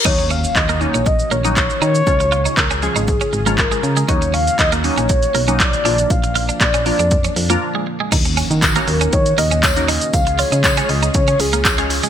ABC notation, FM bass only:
X:1
M:4/4
L:1/16
Q:1/4=119
K:Ebm
V:1 name="FM bass" clef=bass
E,,4 E,,3 B,,,3 B,,,4 E,2 | D,,4 D,,3 A,,,3 A,,,4 D,2 | E,,4 E,,3 B,,,3 C,,4 B,,,2 | B,,,4 B,,,3 F,,3 F,,2 z4 |
E,,3 E,3 E,,2 E,2 E,,6 | D,,3 D,3 D,,2 D,2 D,,6 |]